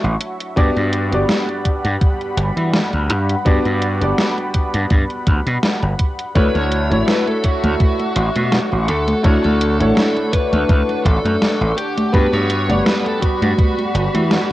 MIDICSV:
0, 0, Header, 1, 6, 480
1, 0, Start_track
1, 0, Tempo, 722892
1, 379, Time_signature, 4, 2, 24, 8
1, 9643, End_track
2, 0, Start_track
2, 0, Title_t, "Analog synth pad"
2, 0, Program_c, 0, 89
2, 0, Note_on_c, 0, 66, 76
2, 0, Note_on_c, 0, 76, 67
2, 0, Note_on_c, 0, 85, 84
2, 352, Note_off_c, 0, 76, 0
2, 353, Note_off_c, 0, 66, 0
2, 354, Note_off_c, 0, 85, 0
2, 378, Note_on_c, 0, 55, 76
2, 379, Note_on_c, 0, 78, 69
2, 381, Note_on_c, 0, 83, 82
2, 4192, Note_off_c, 0, 55, 0
2, 4193, Note_off_c, 0, 78, 0
2, 4193, Note_off_c, 0, 83, 0
2, 4221, Note_on_c, 0, 76, 70
2, 4221, Note_on_c, 0, 78, 76
2, 4221, Note_on_c, 0, 85, 85
2, 6121, Note_off_c, 0, 76, 0
2, 6136, Note_on_c, 0, 62, 70
2, 8033, Note_off_c, 0, 85, 0
2, 8034, Note_off_c, 0, 78, 0
2, 8038, Note_off_c, 0, 62, 0
2, 8059, Note_on_c, 0, 55, 76
2, 8060, Note_on_c, 0, 83, 85
2, 8061, Note_on_c, 0, 78, 73
2, 9643, Note_off_c, 0, 55, 0
2, 9643, Note_off_c, 0, 78, 0
2, 9643, Note_off_c, 0, 83, 0
2, 9643, End_track
3, 0, Start_track
3, 0, Title_t, "Lead electric guitar"
3, 0, Program_c, 1, 29
3, 4220, Note_on_c, 1, 71, 89
3, 4341, Note_off_c, 1, 71, 0
3, 4350, Note_on_c, 1, 73, 90
3, 4675, Note_off_c, 1, 73, 0
3, 4696, Note_on_c, 1, 71, 92
3, 4827, Note_off_c, 1, 71, 0
3, 4830, Note_on_c, 1, 69, 80
3, 4938, Note_on_c, 1, 66, 84
3, 4943, Note_off_c, 1, 69, 0
3, 5894, Note_off_c, 1, 66, 0
3, 5897, Note_on_c, 1, 69, 87
3, 6129, Note_off_c, 1, 69, 0
3, 6132, Note_on_c, 1, 66, 85
3, 6256, Note_off_c, 1, 66, 0
3, 6264, Note_on_c, 1, 69, 89
3, 6607, Note_off_c, 1, 69, 0
3, 6615, Note_on_c, 1, 69, 88
3, 6840, Note_off_c, 1, 69, 0
3, 6853, Note_on_c, 1, 71, 94
3, 7310, Note_off_c, 1, 71, 0
3, 7331, Note_on_c, 1, 69, 98
3, 7810, Note_off_c, 1, 69, 0
3, 7813, Note_on_c, 1, 67, 89
3, 8039, Note_off_c, 1, 67, 0
3, 8051, Note_on_c, 1, 71, 95
3, 8182, Note_off_c, 1, 71, 0
3, 8182, Note_on_c, 1, 73, 100
3, 8530, Note_off_c, 1, 73, 0
3, 8532, Note_on_c, 1, 71, 99
3, 8663, Note_on_c, 1, 69, 91
3, 8670, Note_off_c, 1, 71, 0
3, 8770, Note_off_c, 1, 69, 0
3, 8772, Note_on_c, 1, 66, 94
3, 9643, Note_off_c, 1, 66, 0
3, 9643, End_track
4, 0, Start_track
4, 0, Title_t, "Electric grand piano"
4, 0, Program_c, 2, 2
4, 0, Control_c, 2, 64, 127
4, 0, Note_on_c, 2, 57, 71
4, 0, Note_on_c, 2, 62, 66
4, 0, Note_on_c, 2, 64, 65
4, 0, Note_on_c, 2, 66, 66
4, 0, Note_on_c, 2, 73, 79
4, 347, Note_off_c, 2, 57, 0
4, 350, Note_off_c, 2, 62, 0
4, 352, Note_off_c, 2, 64, 0
4, 355, Note_off_c, 2, 66, 0
4, 357, Note_off_c, 2, 73, 0
4, 372, Note_on_c, 2, 59, 89
4, 375, Note_on_c, 2, 62, 82
4, 377, Note_on_c, 2, 66, 81
4, 379, Note_on_c, 2, 67, 82
4, 382, Note_on_c, 2, 74, 97
4, 387, Control_c, 2, 64, 0
4, 525, Control_c, 2, 64, 127
4, 715, Note_off_c, 2, 59, 0
4, 716, Note_off_c, 2, 62, 0
4, 717, Note_off_c, 2, 66, 0
4, 718, Note_off_c, 2, 67, 0
4, 720, Note_off_c, 2, 74, 0
4, 738, Note_on_c, 2, 59, 71
4, 745, Note_on_c, 2, 62, 68
4, 749, Note_on_c, 2, 66, 69
4, 755, Note_on_c, 2, 67, 67
4, 759, Note_on_c, 2, 74, 83
4, 2267, Note_off_c, 2, 59, 0
4, 2271, Note_off_c, 2, 62, 0
4, 2272, Note_off_c, 2, 66, 0
4, 2275, Note_off_c, 2, 67, 0
4, 2277, Note_off_c, 2, 74, 0
4, 2291, Note_on_c, 2, 59, 90
4, 2295, Note_on_c, 2, 62, 83
4, 2297, Note_on_c, 2, 66, 78
4, 2299, Note_on_c, 2, 67, 82
4, 2303, Note_on_c, 2, 74, 99
4, 2634, Note_off_c, 2, 59, 0
4, 2636, Note_off_c, 2, 62, 0
4, 2637, Note_off_c, 2, 66, 0
4, 2638, Note_off_c, 2, 67, 0
4, 2640, Note_off_c, 2, 74, 0
4, 2660, Note_on_c, 2, 59, 73
4, 2665, Note_on_c, 2, 62, 65
4, 2670, Note_on_c, 2, 66, 65
4, 2675, Note_on_c, 2, 67, 66
4, 2680, Note_on_c, 2, 74, 79
4, 4188, Note_off_c, 2, 59, 0
4, 4191, Note_off_c, 2, 62, 0
4, 4193, Note_off_c, 2, 66, 0
4, 4196, Note_off_c, 2, 67, 0
4, 4198, Note_off_c, 2, 74, 0
4, 4216, Note_on_c, 2, 57, 90
4, 4218, Note_on_c, 2, 62, 81
4, 4221, Note_on_c, 2, 64, 80
4, 4223, Note_on_c, 2, 66, 83
4, 4226, Control_c, 2, 64, 0
4, 4226, Note_on_c, 2, 73, 96
4, 4358, Control_c, 2, 64, 127
4, 4557, Note_off_c, 2, 57, 0
4, 4558, Note_off_c, 2, 62, 0
4, 4559, Note_off_c, 2, 64, 0
4, 4560, Note_off_c, 2, 66, 0
4, 4562, Note_off_c, 2, 73, 0
4, 4580, Note_on_c, 2, 57, 71
4, 4585, Note_on_c, 2, 62, 66
4, 4591, Note_on_c, 2, 64, 66
4, 4595, Note_on_c, 2, 66, 67
4, 4601, Note_on_c, 2, 73, 83
4, 6108, Note_off_c, 2, 57, 0
4, 6111, Note_off_c, 2, 62, 0
4, 6113, Note_off_c, 2, 64, 0
4, 6116, Note_off_c, 2, 66, 0
4, 6118, Note_off_c, 2, 73, 0
4, 6134, Note_on_c, 2, 57, 90
4, 6138, Note_on_c, 2, 62, 81
4, 6140, Note_on_c, 2, 64, 81
4, 6141, Note_on_c, 2, 66, 83
4, 6146, Note_on_c, 2, 73, 96
4, 6476, Note_off_c, 2, 57, 0
4, 6478, Note_off_c, 2, 62, 0
4, 6479, Note_off_c, 2, 64, 0
4, 6479, Note_off_c, 2, 66, 0
4, 6482, Note_off_c, 2, 73, 0
4, 6498, Note_on_c, 2, 57, 74
4, 6504, Note_on_c, 2, 62, 67
4, 6509, Note_on_c, 2, 64, 70
4, 6514, Note_on_c, 2, 78, 67
4, 6518, Note_on_c, 2, 73, 80
4, 8027, Note_off_c, 2, 57, 0
4, 8030, Note_off_c, 2, 62, 0
4, 8033, Note_off_c, 2, 64, 0
4, 8035, Note_off_c, 2, 78, 0
4, 8037, Note_off_c, 2, 73, 0
4, 8054, Note_on_c, 2, 59, 91
4, 8057, Note_on_c, 2, 62, 81
4, 8059, Note_on_c, 2, 66, 84
4, 8061, Note_on_c, 2, 67, 83
4, 8064, Note_on_c, 2, 71, 100
4, 8068, Control_c, 2, 64, 0
4, 8195, Control_c, 2, 64, 127
4, 8396, Note_off_c, 2, 59, 0
4, 8397, Note_off_c, 2, 62, 0
4, 8398, Note_off_c, 2, 66, 0
4, 8399, Note_off_c, 2, 67, 0
4, 8401, Note_off_c, 2, 71, 0
4, 8421, Note_on_c, 2, 59, 74
4, 8425, Note_on_c, 2, 62, 67
4, 8430, Note_on_c, 2, 78, 69
4, 8435, Note_on_c, 2, 55, 67
4, 8441, Note_on_c, 2, 74, 80
4, 9643, Note_off_c, 2, 55, 0
4, 9643, Note_off_c, 2, 59, 0
4, 9643, Note_off_c, 2, 62, 0
4, 9643, Note_off_c, 2, 74, 0
4, 9643, Note_off_c, 2, 78, 0
4, 9643, End_track
5, 0, Start_track
5, 0, Title_t, "Slap bass"
5, 0, Program_c, 3, 36
5, 25, Note_on_c, 3, 33, 90
5, 97, Note_off_c, 3, 33, 0
5, 378, Note_on_c, 3, 43, 96
5, 462, Note_off_c, 3, 43, 0
5, 507, Note_on_c, 3, 43, 83
5, 749, Note_on_c, 3, 31, 83
5, 759, Note_off_c, 3, 43, 0
5, 819, Note_off_c, 3, 31, 0
5, 1226, Note_on_c, 3, 43, 93
5, 1298, Note_off_c, 3, 43, 0
5, 1573, Note_on_c, 3, 31, 92
5, 1659, Note_off_c, 3, 31, 0
5, 1704, Note_on_c, 3, 52, 86
5, 1852, Note_off_c, 3, 52, 0
5, 1948, Note_on_c, 3, 38, 91
5, 2059, Note_off_c, 3, 38, 0
5, 2059, Note_on_c, 3, 43, 81
5, 2219, Note_off_c, 3, 43, 0
5, 2296, Note_on_c, 3, 43, 95
5, 2381, Note_off_c, 3, 43, 0
5, 2426, Note_on_c, 3, 43, 83
5, 2666, Note_on_c, 3, 31, 79
5, 2676, Note_off_c, 3, 43, 0
5, 2737, Note_off_c, 3, 31, 0
5, 3148, Note_on_c, 3, 43, 90
5, 3219, Note_off_c, 3, 43, 0
5, 3258, Note_on_c, 3, 43, 95
5, 3342, Note_off_c, 3, 43, 0
5, 3499, Note_on_c, 3, 38, 88
5, 3582, Note_off_c, 3, 38, 0
5, 3628, Note_on_c, 3, 47, 95
5, 3699, Note_off_c, 3, 47, 0
5, 3867, Note_on_c, 3, 31, 91
5, 3938, Note_off_c, 3, 31, 0
5, 4219, Note_on_c, 3, 38, 94
5, 4302, Note_off_c, 3, 38, 0
5, 4347, Note_on_c, 3, 38, 85
5, 4588, Note_on_c, 3, 33, 80
5, 4598, Note_off_c, 3, 38, 0
5, 4658, Note_off_c, 3, 33, 0
5, 5069, Note_on_c, 3, 38, 92
5, 5139, Note_off_c, 3, 38, 0
5, 5419, Note_on_c, 3, 33, 93
5, 5502, Note_off_c, 3, 33, 0
5, 5550, Note_on_c, 3, 47, 90
5, 5695, Note_off_c, 3, 47, 0
5, 5793, Note_on_c, 3, 33, 91
5, 5901, Note_off_c, 3, 33, 0
5, 5901, Note_on_c, 3, 38, 82
5, 6061, Note_off_c, 3, 38, 0
5, 6139, Note_on_c, 3, 38, 92
5, 6222, Note_off_c, 3, 38, 0
5, 6273, Note_on_c, 3, 38, 85
5, 6512, Note_on_c, 3, 33, 81
5, 6522, Note_off_c, 3, 38, 0
5, 6581, Note_off_c, 3, 33, 0
5, 6990, Note_on_c, 3, 38, 96
5, 7059, Note_off_c, 3, 38, 0
5, 7099, Note_on_c, 3, 38, 95
5, 7182, Note_off_c, 3, 38, 0
5, 7340, Note_on_c, 3, 33, 87
5, 7422, Note_off_c, 3, 33, 0
5, 7468, Note_on_c, 3, 42, 96
5, 7539, Note_off_c, 3, 42, 0
5, 7709, Note_on_c, 3, 33, 91
5, 7779, Note_off_c, 3, 33, 0
5, 8060, Note_on_c, 3, 43, 99
5, 8143, Note_off_c, 3, 43, 0
5, 8187, Note_on_c, 3, 43, 84
5, 8429, Note_on_c, 3, 31, 83
5, 8439, Note_off_c, 3, 43, 0
5, 8499, Note_off_c, 3, 31, 0
5, 8910, Note_on_c, 3, 43, 92
5, 8979, Note_off_c, 3, 43, 0
5, 9259, Note_on_c, 3, 31, 97
5, 9342, Note_off_c, 3, 31, 0
5, 9391, Note_on_c, 3, 52, 91
5, 9535, Note_off_c, 3, 52, 0
5, 9643, End_track
6, 0, Start_track
6, 0, Title_t, "Drums"
6, 29, Note_on_c, 9, 42, 26
6, 95, Note_off_c, 9, 42, 0
6, 137, Note_on_c, 9, 42, 93
6, 203, Note_off_c, 9, 42, 0
6, 268, Note_on_c, 9, 42, 54
6, 335, Note_off_c, 9, 42, 0
6, 378, Note_on_c, 9, 42, 52
6, 379, Note_on_c, 9, 36, 118
6, 445, Note_off_c, 9, 36, 0
6, 445, Note_off_c, 9, 42, 0
6, 508, Note_on_c, 9, 42, 25
6, 575, Note_off_c, 9, 42, 0
6, 617, Note_on_c, 9, 42, 91
6, 683, Note_off_c, 9, 42, 0
6, 747, Note_on_c, 9, 42, 54
6, 814, Note_off_c, 9, 42, 0
6, 856, Note_on_c, 9, 38, 118
6, 856, Note_on_c, 9, 42, 52
6, 923, Note_off_c, 9, 38, 0
6, 923, Note_off_c, 9, 42, 0
6, 988, Note_on_c, 9, 42, 25
6, 1055, Note_off_c, 9, 42, 0
6, 1097, Note_on_c, 9, 42, 90
6, 1098, Note_on_c, 9, 36, 61
6, 1163, Note_off_c, 9, 42, 0
6, 1164, Note_off_c, 9, 36, 0
6, 1227, Note_on_c, 9, 42, 52
6, 1293, Note_off_c, 9, 42, 0
6, 1337, Note_on_c, 9, 36, 124
6, 1337, Note_on_c, 9, 42, 51
6, 1403, Note_off_c, 9, 42, 0
6, 1404, Note_off_c, 9, 36, 0
6, 1468, Note_on_c, 9, 42, 26
6, 1534, Note_off_c, 9, 42, 0
6, 1577, Note_on_c, 9, 42, 89
6, 1643, Note_off_c, 9, 42, 0
6, 1707, Note_on_c, 9, 42, 51
6, 1774, Note_off_c, 9, 42, 0
6, 1817, Note_on_c, 9, 38, 116
6, 1817, Note_on_c, 9, 42, 53
6, 1883, Note_off_c, 9, 38, 0
6, 1883, Note_off_c, 9, 42, 0
6, 1947, Note_on_c, 9, 42, 26
6, 2013, Note_off_c, 9, 42, 0
6, 2057, Note_on_c, 9, 42, 91
6, 2123, Note_off_c, 9, 42, 0
6, 2187, Note_on_c, 9, 42, 52
6, 2254, Note_off_c, 9, 42, 0
6, 2296, Note_on_c, 9, 42, 51
6, 2297, Note_on_c, 9, 36, 121
6, 2362, Note_off_c, 9, 42, 0
6, 2364, Note_off_c, 9, 36, 0
6, 2427, Note_on_c, 9, 42, 25
6, 2493, Note_off_c, 9, 42, 0
6, 2536, Note_on_c, 9, 42, 85
6, 2602, Note_off_c, 9, 42, 0
6, 2666, Note_on_c, 9, 42, 51
6, 2732, Note_off_c, 9, 42, 0
6, 2776, Note_on_c, 9, 38, 113
6, 2776, Note_on_c, 9, 42, 49
6, 2843, Note_off_c, 9, 38, 0
6, 2843, Note_off_c, 9, 42, 0
6, 2908, Note_on_c, 9, 42, 25
6, 2974, Note_off_c, 9, 42, 0
6, 3015, Note_on_c, 9, 42, 89
6, 3018, Note_on_c, 9, 36, 61
6, 3081, Note_off_c, 9, 42, 0
6, 3084, Note_off_c, 9, 36, 0
6, 3147, Note_on_c, 9, 42, 51
6, 3213, Note_off_c, 9, 42, 0
6, 3255, Note_on_c, 9, 42, 50
6, 3258, Note_on_c, 9, 36, 123
6, 3322, Note_off_c, 9, 42, 0
6, 3325, Note_off_c, 9, 36, 0
6, 3386, Note_on_c, 9, 42, 25
6, 3452, Note_off_c, 9, 42, 0
6, 3497, Note_on_c, 9, 42, 87
6, 3498, Note_on_c, 9, 36, 107
6, 3563, Note_off_c, 9, 42, 0
6, 3565, Note_off_c, 9, 36, 0
6, 3629, Note_on_c, 9, 42, 48
6, 3696, Note_off_c, 9, 42, 0
6, 3738, Note_on_c, 9, 38, 117
6, 3738, Note_on_c, 9, 42, 51
6, 3804, Note_off_c, 9, 38, 0
6, 3804, Note_off_c, 9, 42, 0
6, 3868, Note_on_c, 9, 42, 25
6, 3934, Note_off_c, 9, 42, 0
6, 3977, Note_on_c, 9, 42, 87
6, 3979, Note_on_c, 9, 36, 63
6, 4043, Note_off_c, 9, 42, 0
6, 4046, Note_off_c, 9, 36, 0
6, 4109, Note_on_c, 9, 42, 50
6, 4175, Note_off_c, 9, 42, 0
6, 4219, Note_on_c, 9, 42, 50
6, 4219, Note_on_c, 9, 63, 42
6, 4220, Note_on_c, 9, 36, 115
6, 4285, Note_off_c, 9, 42, 0
6, 4285, Note_off_c, 9, 63, 0
6, 4286, Note_off_c, 9, 36, 0
6, 4349, Note_on_c, 9, 42, 23
6, 4349, Note_on_c, 9, 63, 25
6, 4415, Note_off_c, 9, 42, 0
6, 4415, Note_off_c, 9, 63, 0
6, 4459, Note_on_c, 9, 42, 85
6, 4525, Note_off_c, 9, 42, 0
6, 4591, Note_on_c, 9, 42, 48
6, 4591, Note_on_c, 9, 63, 52
6, 4657, Note_off_c, 9, 42, 0
6, 4657, Note_off_c, 9, 63, 0
6, 4699, Note_on_c, 9, 38, 112
6, 4699, Note_on_c, 9, 42, 48
6, 4699, Note_on_c, 9, 63, 42
6, 4765, Note_off_c, 9, 38, 0
6, 4765, Note_off_c, 9, 42, 0
6, 4765, Note_off_c, 9, 63, 0
6, 4829, Note_on_c, 9, 42, 24
6, 4829, Note_on_c, 9, 63, 25
6, 4895, Note_off_c, 9, 42, 0
6, 4895, Note_off_c, 9, 63, 0
6, 4938, Note_on_c, 9, 42, 84
6, 4941, Note_on_c, 9, 36, 60
6, 5004, Note_off_c, 9, 42, 0
6, 5007, Note_off_c, 9, 36, 0
6, 5070, Note_on_c, 9, 42, 50
6, 5070, Note_on_c, 9, 63, 51
6, 5137, Note_off_c, 9, 42, 0
6, 5137, Note_off_c, 9, 63, 0
6, 5179, Note_on_c, 9, 42, 47
6, 5179, Note_on_c, 9, 63, 43
6, 5181, Note_on_c, 9, 36, 120
6, 5246, Note_off_c, 9, 42, 0
6, 5246, Note_off_c, 9, 63, 0
6, 5247, Note_off_c, 9, 36, 0
6, 5309, Note_on_c, 9, 42, 24
6, 5309, Note_on_c, 9, 63, 25
6, 5376, Note_off_c, 9, 42, 0
6, 5376, Note_off_c, 9, 63, 0
6, 5418, Note_on_c, 9, 42, 85
6, 5484, Note_off_c, 9, 42, 0
6, 5549, Note_on_c, 9, 42, 49
6, 5549, Note_on_c, 9, 63, 51
6, 5615, Note_off_c, 9, 42, 0
6, 5615, Note_off_c, 9, 63, 0
6, 5658, Note_on_c, 9, 38, 115
6, 5658, Note_on_c, 9, 42, 49
6, 5658, Note_on_c, 9, 63, 43
6, 5725, Note_off_c, 9, 38, 0
6, 5725, Note_off_c, 9, 42, 0
6, 5725, Note_off_c, 9, 63, 0
6, 5790, Note_on_c, 9, 42, 24
6, 5790, Note_on_c, 9, 63, 26
6, 5856, Note_off_c, 9, 42, 0
6, 5856, Note_off_c, 9, 63, 0
6, 5899, Note_on_c, 9, 42, 87
6, 5965, Note_off_c, 9, 42, 0
6, 6029, Note_on_c, 9, 42, 49
6, 6029, Note_on_c, 9, 63, 50
6, 6095, Note_off_c, 9, 42, 0
6, 6095, Note_off_c, 9, 63, 0
6, 6138, Note_on_c, 9, 42, 49
6, 6138, Note_on_c, 9, 63, 43
6, 6140, Note_on_c, 9, 36, 112
6, 6205, Note_off_c, 9, 42, 0
6, 6205, Note_off_c, 9, 63, 0
6, 6207, Note_off_c, 9, 36, 0
6, 6271, Note_on_c, 9, 42, 23
6, 6271, Note_on_c, 9, 63, 25
6, 6337, Note_off_c, 9, 42, 0
6, 6337, Note_off_c, 9, 63, 0
6, 6382, Note_on_c, 9, 42, 85
6, 6448, Note_off_c, 9, 42, 0
6, 6511, Note_on_c, 9, 42, 48
6, 6511, Note_on_c, 9, 63, 52
6, 6578, Note_off_c, 9, 42, 0
6, 6578, Note_off_c, 9, 63, 0
6, 6621, Note_on_c, 9, 38, 105
6, 6621, Note_on_c, 9, 42, 48
6, 6621, Note_on_c, 9, 63, 43
6, 6687, Note_off_c, 9, 38, 0
6, 6687, Note_off_c, 9, 42, 0
6, 6687, Note_off_c, 9, 63, 0
6, 6751, Note_on_c, 9, 42, 25
6, 6751, Note_on_c, 9, 63, 26
6, 6818, Note_off_c, 9, 42, 0
6, 6818, Note_off_c, 9, 63, 0
6, 6860, Note_on_c, 9, 36, 56
6, 6861, Note_on_c, 9, 42, 88
6, 6927, Note_off_c, 9, 36, 0
6, 6927, Note_off_c, 9, 42, 0
6, 6991, Note_on_c, 9, 42, 48
6, 6991, Note_on_c, 9, 63, 53
6, 7057, Note_off_c, 9, 42, 0
6, 7057, Note_off_c, 9, 63, 0
6, 7100, Note_on_c, 9, 36, 110
6, 7100, Note_on_c, 9, 42, 48
6, 7100, Note_on_c, 9, 63, 44
6, 7166, Note_off_c, 9, 36, 0
6, 7167, Note_off_c, 9, 42, 0
6, 7167, Note_off_c, 9, 63, 0
6, 7232, Note_on_c, 9, 42, 24
6, 7232, Note_on_c, 9, 63, 26
6, 7299, Note_off_c, 9, 42, 0
6, 7299, Note_off_c, 9, 63, 0
6, 7340, Note_on_c, 9, 36, 99
6, 7343, Note_on_c, 9, 42, 82
6, 7407, Note_off_c, 9, 36, 0
6, 7409, Note_off_c, 9, 42, 0
6, 7474, Note_on_c, 9, 42, 47
6, 7474, Note_on_c, 9, 63, 52
6, 7540, Note_off_c, 9, 42, 0
6, 7540, Note_off_c, 9, 63, 0
6, 7582, Note_on_c, 9, 38, 109
6, 7582, Note_on_c, 9, 42, 48
6, 7582, Note_on_c, 9, 63, 44
6, 7649, Note_off_c, 9, 38, 0
6, 7649, Note_off_c, 9, 42, 0
6, 7649, Note_off_c, 9, 63, 0
6, 7714, Note_on_c, 9, 42, 24
6, 7714, Note_on_c, 9, 63, 26
6, 7780, Note_off_c, 9, 42, 0
6, 7780, Note_off_c, 9, 63, 0
6, 7821, Note_on_c, 9, 42, 85
6, 7888, Note_off_c, 9, 42, 0
6, 7953, Note_on_c, 9, 42, 47
6, 7953, Note_on_c, 9, 63, 54
6, 8019, Note_off_c, 9, 42, 0
6, 8019, Note_off_c, 9, 63, 0
6, 8060, Note_on_c, 9, 36, 114
6, 8061, Note_on_c, 9, 42, 51
6, 8061, Note_on_c, 9, 63, 48
6, 8126, Note_off_c, 9, 36, 0
6, 8127, Note_off_c, 9, 42, 0
6, 8127, Note_off_c, 9, 63, 0
6, 8190, Note_on_c, 9, 42, 25
6, 8190, Note_on_c, 9, 63, 26
6, 8257, Note_off_c, 9, 42, 0
6, 8257, Note_off_c, 9, 63, 0
6, 8300, Note_on_c, 9, 42, 90
6, 8367, Note_off_c, 9, 42, 0
6, 8432, Note_on_c, 9, 42, 50
6, 8432, Note_on_c, 9, 63, 55
6, 8498, Note_off_c, 9, 42, 0
6, 8498, Note_off_c, 9, 63, 0
6, 8542, Note_on_c, 9, 38, 107
6, 8542, Note_on_c, 9, 42, 50
6, 8542, Note_on_c, 9, 63, 46
6, 8608, Note_off_c, 9, 38, 0
6, 8608, Note_off_c, 9, 42, 0
6, 8608, Note_off_c, 9, 63, 0
6, 8673, Note_on_c, 9, 42, 25
6, 8673, Note_on_c, 9, 63, 28
6, 8739, Note_off_c, 9, 42, 0
6, 8739, Note_off_c, 9, 63, 0
6, 8780, Note_on_c, 9, 36, 57
6, 8781, Note_on_c, 9, 42, 89
6, 8847, Note_off_c, 9, 36, 0
6, 8847, Note_off_c, 9, 42, 0
6, 8913, Note_on_c, 9, 42, 52
6, 8913, Note_on_c, 9, 63, 57
6, 8979, Note_off_c, 9, 42, 0
6, 8979, Note_off_c, 9, 63, 0
6, 9020, Note_on_c, 9, 36, 112
6, 9021, Note_on_c, 9, 42, 50
6, 9021, Note_on_c, 9, 63, 46
6, 9086, Note_off_c, 9, 36, 0
6, 9088, Note_off_c, 9, 42, 0
6, 9088, Note_off_c, 9, 63, 0
6, 9154, Note_on_c, 9, 42, 25
6, 9154, Note_on_c, 9, 63, 27
6, 9221, Note_off_c, 9, 42, 0
6, 9221, Note_off_c, 9, 63, 0
6, 9262, Note_on_c, 9, 42, 86
6, 9329, Note_off_c, 9, 42, 0
6, 9393, Note_on_c, 9, 42, 49
6, 9393, Note_on_c, 9, 63, 55
6, 9459, Note_off_c, 9, 42, 0
6, 9459, Note_off_c, 9, 63, 0
6, 9501, Note_on_c, 9, 38, 110
6, 9501, Note_on_c, 9, 42, 51
6, 9501, Note_on_c, 9, 63, 46
6, 9567, Note_off_c, 9, 38, 0
6, 9567, Note_off_c, 9, 42, 0
6, 9567, Note_off_c, 9, 63, 0
6, 9643, End_track
0, 0, End_of_file